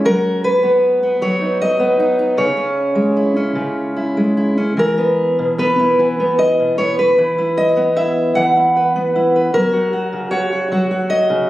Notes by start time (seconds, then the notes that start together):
Already playing: C#4
0.05 F#3 A#4
0.44 B4
0.63 B3
1.03 B3
1.22 F#3 C#5
1.41 D#4
1.62 D#5
1.79 B3
2.00 D#4
2.19 D#4
2.37 C#3 C#5
2.57 C#4
2.95 G#3
3.17 E4
3.36 C#4
3.55 C#3
3.96 E4
4.17 G#3
4.37 E4
4.58 C#4
4.77 E3 A#4
4.98 B3
5.39 B2
5.58 B3 B4
5.79 E4
5.99 E3 F#4
6.20 B3
6.39 D#5
6.59 B2
6.78 B3 C#5
6.99 B4
7.18 E3 E4
7.38 E4
7.57 D#5
7.77 B3
7.96 E4 E5
8.35 E3 F#5
8.56 E4
8.76 B4
8.96 B3
9.16 E4
9.36 B4
9.54 F#3 A#4
9.73 F#4
9.93 F#4
10.12 C#3
10.31 F#4 C#5
10.53 F#4
10.72 F#3 F#4
10.91 F#4
11.10 D#5
11.30 C#3